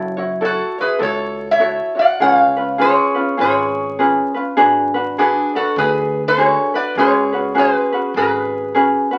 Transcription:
Already playing: upright bass F#1, ukulele E4 F#4 A4 C#5
0.17 ukulele E4 F#4 C#5
0.41 ukulele E4 F#4 A4 C#5, resonator guitar played with a steel bar F#4
0.45 resonator guitar played with a steel bar A4
0.78 ukulele E4 F#4 C#5, resonator guitar played with a steel bar G#4 B4
0.99 upright bass C#2, ukulele E4 F#4 A4 C#5, resonator guitar played with a steel bar C#5
1.04 resonator guitar played with a steel bar A4
1.51 resonator guitar played with a steel bar C#5 E5
1.60 ukulele E4 F#4 A4 C#5
1.95 ukulele E4 F#4 C#5
1.99 resonator guitar played with a steel bar D5 F#5
2.20 upright bass C#2, ukulele C#4 F4 G#4 B4, resonator guitar played with a steel bar C#5 F#5
2.33 resonator guitar played with a steel bar F5
2.57 ukulele C#4 F4 B4
2.78 ukulele C#4 F4 G#4 B4, resonator guitar played with a steel bar C#5
2.83 resonator guitar played with a steel bar G#4
3.15 ukulele C#4 F4 B4
3.37 upright bass G#1, ukulele C#4 F4 G#4 B4, resonator guitar played with a steel bar C#5
3.43 resonator guitar played with a steel bar G#4
3.99 ukulele C#4 F4 G#4 B4
4.34 ukulele C#4 F4 B4
4.57 upright bass G#1, ukulele D4 F#4 G#4 B4
4.94 ukulele D4 F#4 B4
5.18 resonator guitar played with a steel bar D4 G#4, ukulele D4 F#4 G#4 B4
5.55 ukulele D4 F#4 B4, resonator guitar played with a steel bar F#4 A4
5.76 upright bass D2, ukulele D4 F#4 G#4 B4, resonator guitar played with a steel bar G#4 B4
6.28 resonator guitar played with a steel bar A4 C#5
6.38 ukulele D4 F#4 G#4 B4
6.74 ukulele D4 F#4 B4, resonator guitar played with a steel bar B4 D5
6.95 upright bass C#2, ukulele C#4 F#4 G#4 B4, resonator guitar played with a steel bar G#4
6.99 resonator guitar played with a steel bar C#5
7.33 ukulele C#4 F#4 B4
7.54 ukulele C#4 F#4 G#4 B4, resonator guitar played with a steel bar G#4
7.59 resonator guitar played with a steel bar B4
7.92 ukulele C#4 F#4 B4
8.14 upright bass G#1, ukulele C#4 F#4 G#4 B4, resonator guitar played with a steel bar G#4 B4
8.75 ukulele C#4 F#4 G#4 B4
9.11 ukulele C#4 F#4 B4

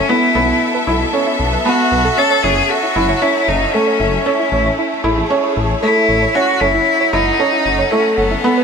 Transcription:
Already playing: cello C#4, string section C#4 A4 E5
0.09 string section B2, felt piano B3, cello E4, synth arpeggio sound E4
0.35 detuned saw bass B1, felt piano B3, synth arpeggio sound A4
0.49 synth arpeggio sound E4
0.67 string section B3
0.74 synth arpeggio sound B4
0.87 detuned saw bass B1, felt piano E4, synth arpeggio sound E4
1.13 felt piano C#4, synth arpeggio sound A4
1.27 synth arpeggio sound E4
1.39 detuned saw bass B1
1.53 synth arpeggio sound B4
1.65 felt piano B3, cello F#4, synth arpeggio sound A5
1.92 detuned saw bass B1, synth arpeggio sound B4
2.05 synth arpeggio sound A4
2.17 string section F#3, felt piano C#4, cello A4
2.31 synth arpeggio sound C#5
2.43 detuned saw bass F#1, felt piano C#4, synth arpeggio sound E4, cello G#4
2.70 cello F#4, synth arpeggio sound A4
2.83 synth arpeggio sound E4
2.91 string section C#4
2.96 detuned saw bass F#1, felt piano E4
3.09 synth arpeggio sound C#5
3.22 felt piano C#4, cello E4, synth arpeggio sound E4
3.48 detuned saw bass F#1, cello D#4, synth arpeggio sound A4
3.61 synth arpeggio sound E4
3.74 felt piano A3, cello C#4
3.87 synth arpeggio sound C#5
4.00 detuned saw bass F#1, synth arpeggio sound E4
4.26 string section A3, felt piano C#4, cello E4, synth arpeggio sound A4
4.40 synth arpeggio sound E4
4.52 detuned saw bass A1, felt piano C#4
4.66 synth arpeggio sound C#5
4.79 synth arpeggio sound E4
4.84 string section E4
5.04 detuned saw bass A1, felt piano E4, string section G#4, synth arpeggio sound A4
5.18 synth arpeggio sound E4, string section C#5
5.30 felt piano C#4
5.44 synth arpeggio sound C#5
5.57 detuned saw bass A1, synth arpeggio sound E4
5.83 felt piano A3, cello E4, synth arpeggio sound A4
5.96 synth arpeggio sound E4
6.09 detuned saw bass A1
6.22 synth arpeggio sound C#5
6.35 string section F#3, felt piano C#4, synth arpeggio sound E4, cello F#4
6.61 detuned saw bass F#1, felt piano C#4, cello E4, synth arpeggio sound A4
6.74 synth arpeggio sound E4
6.98 string section C#4, synth arpeggio sound C#5
7.13 detuned saw bass F#1, cello D#4, felt piano E4, synth arpeggio sound E4, string section F#5
7.29 string section A4
7.39 felt piano C#4, synth arpeggio sound A4
7.53 synth arpeggio sound E4
7.66 detuned saw bass F#1
7.79 synth arpeggio sound C#5
7.91 felt piano A3, cello C#4, synth arpeggio sound E4
8.17 detuned saw bass F#1, cello B3, synth arpeggio sound A4
8.31 synth arpeggio sound E4
8.44 string section B2, felt piano B3
8.58 synth arpeggio sound B4

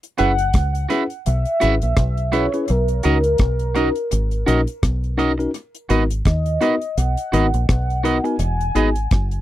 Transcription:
0.03 closed hi-hat
0.18 fingered electric bass F#1, tine electric piano C#4 E4 G#4 B4, clean electric guitar F#4 B4 E5, soft synth lead F#5, closed hi-hat
0.38 closed hi-hat
0.53 fingered electric bass C#2, kick, cross-stick, closed hi-hat
0.75 closed hi-hat
0.89 tine electric piano C#4 E4 G#4 B4, clean electric guitar F#4 B4 E5, closed hi-hat
1.10 closed hi-hat
1.26 fingered electric bass B1, soft synth lead E5, closed hi-hat
1.45 closed hi-hat
1.60 fingered electric bass G#1, tine electric piano C#4 E4 G#4 B4, clean electric guitar F#4 B4 E5, closed hi-hat
1.82 fingered electric bass A#1, soft synth lead E5, closed hi-hat
1.97 fingered electric bass B1, kick, cross-stick, closed hi-hat
2.17 closed hi-hat
2.32 tine electric piano C#4 E4 G#4 B4, clean electric guitar F#4 B4 E5, soft synth lead C#5, closed hi-hat
2.52 tine electric piano C#4 E4 G#4 B4, muted clean electric guitar stroke, closed hi-hat
2.68 fingered electric bass B1, soft synth lead A#4, closed hi-hat
2.88 closed hi-hat
3.03 fingered electric bass C#2, tine electric piano C#4 D#4 F#4 A#4, clean electric guitar F#4 A#4 D#5, closed hi-hat
3.24 closed hi-hat
3.38 fingered electric bass B1, kick, cross-stick, closed hi-hat
3.59 closed hi-hat
3.75 tine electric piano C#4 D#4 F#4 A#4, clean electric guitar F#4 A#4 D#5, closed hi-hat
3.95 closed hi-hat
4.11 fingered electric bass G#1, closed hi-hat
4.31 closed hi-hat
4.46 fingered electric bass A#1, tine electric piano C#4 D#4 F#4 A#4, clean electric guitar F#4 A#4 D#5, closed hi-hat
4.67 closed hi-hat
4.83 fingered electric bass B1, kick, cross-stick, closed hi-hat
5.04 closed hi-hat
5.18 tine electric piano C#4 D#4 F#4 A#4, clean electric guitar F#4 A#4 D#5, closed hi-hat
5.38 tine electric piano C#4 D#4 F#4 A#4, muted clean electric guitar stroke, closed hi-hat
5.54 closed hi-hat
5.75 closed hi-hat
5.89 fingered electric bass G#1, tine electric piano B3 D#4 F#4 A#4, clean electric guitar F#4 B4 D#5, closed hi-hat
6.10 closed hi-hat
6.25 fingered electric bass D#2, soft synth lead D#5, kick, cross-stick, closed hi-hat
6.46 closed hi-hat
6.61 tine electric piano B3 D#4 F#4 A#4, clean electric guitar F#4 B4 D#5, closed hi-hat
6.82 closed hi-hat
6.97 fingered electric bass B1, soft synth lead F#5, closed hi-hat
7.17 closed hi-hat
7.32 fingered electric bass G#1, tine electric piano B3 D#4 F#4 A#4, clean electric guitar F#4 B4 D#5, closed hi-hat
7.54 fingered electric bass A#1, closed hi-hat
7.68 fingered electric bass B1, soft synth lead F#5, kick, cross-stick, closed hi-hat
7.90 closed hi-hat
8.03 tine electric piano B3 D#4 F#4 A#4, clean electric guitar F#4 B4 D#5, closed hi-hat
8.23 tine electric piano B3 D#4 F#4 A#4, soft synth lead G#5, muted clean electric guitar stroke, closed hi-hat
8.39 fingered electric bass E1, closed hi-hat
8.61 closed hi-hat
8.75 fingered electric bass G#1, tine electric piano B3 D#4 F#4 G#4, clean electric guitar G#4 B4 D#5, closed hi-hat
8.95 closed hi-hat
9.11 fingered electric bass F#1, kick, cross-stick, closed hi-hat
9.31 closed hi-hat

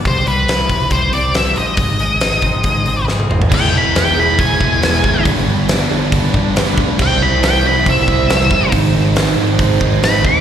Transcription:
0.05 picked electric bass C2, clean electric guitar C3, lead electric guitar C5, kick, open hi-hat
0.27 picked electric bass C2, clean electric guitar G3, lead electric guitar B4, open hi-hat
0.48 picked electric bass C2, clean electric guitar E4, snare, open hi-hat
0.69 picked electric bass C2, clean electric guitar C4, kick, open hi-hat
0.91 picked electric bass C2, clean electric guitar G3, lead electric guitar C5, kick, open hi-hat
1.12 picked electric bass C2, clean electric guitar C4, lead electric guitar D5, open hi-hat
1.34 picked electric bass C2, clean electric guitar G4, lead electric guitar E5, snare, open hi-hat
1.56 picked electric bass A1, clean electric guitar C4, lead electric guitar D#5, open hi-hat
1.77 picked electric bass G#1, clean electric guitar G#2, kick, open hi-hat
1.99 picked electric bass G#1, clean electric guitar G#3, open hi-hat
2.21 picked electric bass G#1, clean electric guitar D#4, snare, open hi-hat
2.42 picked electric bass G#1, clean electric guitar C4, kick, open hi-hat
2.64 picked electric bass G#1, clean electric guitar G#3, kick, open hi-hat
2.86 picked electric bass G#1, clean electric guitar C4, open hi-hat
3.08 picked electric bass G#1, clean electric guitar G#4, snare
3.20 high tom
3.29 picked electric bass G#1, clean electric guitar C4, mid tom
3.42 floor tom
3.51 picked electric bass E1, distorted electric guitar E3 G#3 B3 E4, overdriven electric guitar G#4, lead electric guitar G5, kick, crash
3.72 picked electric bass E1, distorted electric guitar G#3 B3 E4, overdriven electric guitar G#4
3.78 lead electric guitar B5
3.94 picked electric bass E1, distorted electric guitar E3 G#3 B3 E4, overdriven electric guitar G#4, snare, open hi-hat
3.98 lead electric guitar G5
4.16 picked electric bass E1, distorted electric guitar E3 G#3 B3 E4, overdriven electric guitar G#4, lead electric guitar B5
4.38 picked electric bass E1, distorted electric guitar E3 G#3 B3 E4, overdriven electric guitar G#4, lead electric guitar G#5, kick, open hi-hat
4.60 picked electric bass E1, distorted electric guitar G#3 B3 E4, overdriven electric guitar G#4, kick
4.80 picked electric bass E1, distorted electric guitar E3 G#3 B3 E4, snare, open hi-hat
4.85 overdriven electric guitar G#4
5.04 picked electric bass G#1, distorted electric guitar E3 G#3 B3 E4, kick
5.25 picked electric bass G1, distorted electric guitar G2 D3 G3 B3 D4, kick, open hi-hat
5.47 picked electric bass G1, distorted electric guitar G3 B3 D4
5.68 picked electric bass G1, distorted electric guitar D3 G3 B3 D4, snare, open hi-hat
5.90 picked electric bass G1, distorted electric guitar G2 D3 G3 B3 D4
6.12 picked electric bass G1, overdriven electric guitar G2, distorted electric guitar D3 G3 B3 D4, kick, open hi-hat
6.33 picked electric bass G1, distorted electric guitar G3 B3 D4, kick
6.55 picked electric bass G1, distorted electric guitar D3 G3 B3 D4, snare, open hi-hat
6.75 picked electric bass D2, distorted electric guitar G2 D3 G3 B3 D4, kick
6.98 picked electric bass C2, distorted electric guitar C3 G3 C4 E4, lead electric guitar G5, kick, crash
7.20 picked electric bass C2, distorted electric guitar G3 C4 E4, lead electric guitar B5
7.42 picked electric bass C2, distorted electric guitar C3 G3 C4 E4, lead electric guitar G5, snare, open hi-hat
7.64 picked electric bass C2, distorted electric guitar C3 G3 C4 E4, lead electric guitar B5
7.85 picked electric bass C2, distorted electric guitar C3 G3 C4 E4, kick, open hi-hat
7.90 lead electric guitar E5
8.07 picked electric bass C2, distorted electric guitar G3 C4 E4, kick
8.27 picked electric bass C2, distorted electric guitar C3 G3 C4 E4, snare, open hi-hat
8.50 picked electric bass G1, distorted electric guitar C3 G3 C4 E4, kick
8.71 picked electric bass G#1, distorted electric guitar G#2 D#3 G#3 C4 D#4, kick, open hi-hat
8.93 picked electric bass G#1, distorted electric guitar G#3 C4 D#4
9.14 picked electric bass G#1, distorted electric guitar D#3 G#3 C4 D#4, snare, open hi-hat
9.36 picked electric bass G#1, distorted electric guitar G#2 D#3 G#3 C4 D#4
9.57 picked electric bass G#1, overdriven electric guitar G#2, distorted electric guitar D#3 G#3 C4 D#4, kick, open hi-hat
9.80 picked electric bass G#1, distorted electric guitar G#3 C4 D#4, kick
10.02 picked electric bass G#1, distorted electric guitar D#3 G#3 C4 D#4, lead electric guitar B5, snare, open hi-hat
10.23 picked electric bass D#2, distorted electric guitar G#2 D#3 G#3 C4 D#4, lead electric guitar D6, kick

